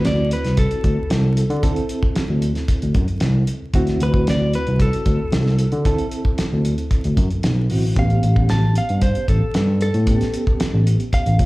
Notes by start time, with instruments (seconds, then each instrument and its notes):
Already playing: tine electric piano D2, reed electric piano C4 E4 F#4
0.05 clean electric guitar D5, snare, closed hi-hat
0.31 clean electric guitar B4, closed hi-hat
0.45 tine electric piano C2, snare, closed hi-hat
0.57 clean electric guitar A4, kick, closed hi-hat
0.71 closed hi-hat
0.84 tine electric piano D2, kick, closed hi-hat
1.10 tine electric piano C2, snare, closed hi-hat
1.37 closed hi-hat
1.50 tine electric piano D3, closed hi-hat
1.63 reed electric piano C4 E4 A4, kick, closed hi-hat
1.76 closed hi-hat
1.89 closed hi-hat
2.03 kick
2.16 snare, closed hi-hat
2.29 tine electric piano D2
2.42 closed hi-hat
2.55 snare, closed hi-hat
2.68 kick, closed hi-hat
2.82 tine electric piano D2, closed hi-hat
2.94 tine electric piano F#2, kick, closed hi-hat
3.08 closed hi-hat
3.20 tine electric piano C2, snare, closed hi-hat
3.47 closed hi-hat
3.62 tine electric piano D2
3.74 tine electric piano D2, reed electric piano C4 E4 F#4, kick, closed hi-hat
3.87 snare, closed hi-hat
4.00 tine electric piano D2, clean electric guitar B4, closed hi-hat
4.14 kick
4.27 clean electric guitar D5, snare, closed hi-hat
4.53 clean electric guitar B4, closed hi-hat
4.67 tine electric piano C2, closed hi-hat
4.80 clean electric guitar A4, kick, closed hi-hat
4.93 closed hi-hat
5.06 tine electric piano D2, kick, closed hi-hat
5.32 tine electric piano C2, snare, closed hi-hat
5.46 snare
5.59 closed hi-hat
5.72 tine electric piano D3, closed hi-hat
5.85 reed electric piano C4 E4 A4, kick, closed hi-hat
5.98 closed hi-hat
6.11 closed hi-hat
6.25 kick
6.38 snare, closed hi-hat
6.52 tine electric piano D2
6.65 closed hi-hat
6.78 closed hi-hat
6.91 kick, closed hi-hat
7.04 tine electric piano D2, closed hi-hat
7.17 tine electric piano F#2, kick, closed hi-hat
7.31 closed hi-hat
7.43 tine electric piano B1, snare, closed hi-hat
7.70 tine electric piano A1, reed electric piano C4 E4 F#4, open hi-hat
7.96 tine electric piano A1, reed electric piano B3 C#4 G4, clean electric guitar F5, kick, closed hi-hat
8.10 closed hi-hat
8.23 tine electric piano A1, closed hi-hat
8.36 kick
8.49 clean electric guitar A5, snare, closed hi-hat
8.75 clean electric guitar F5, closed hi-hat
8.89 tine electric piano G2, closed hi-hat
9.01 clean electric guitar C5, kick, closed hi-hat
9.15 closed hi-hat
9.28 tine electric piano A1, clean electric guitar A4, kick, closed hi-hat
9.54 tine electric piano G2, snare, closed hi-hat
9.81 clean electric guitar A4, closed hi-hat
9.94 tine electric piano A2, closed hi-hat
10.07 reed electric piano B3 C#4 G4, kick, closed hi-hat
10.21 snare, closed hi-hat
10.34 closed hi-hat
10.47 kick
10.60 snare, closed hi-hat
10.74 tine electric piano A1
10.87 closed hi-hat
11.00 closed hi-hat
11.13 clean electric guitar F5, kick, closed hi-hat
11.26 tine electric piano A1, closed hi-hat
11.39 tine electric piano C#2, kick, closed hi-hat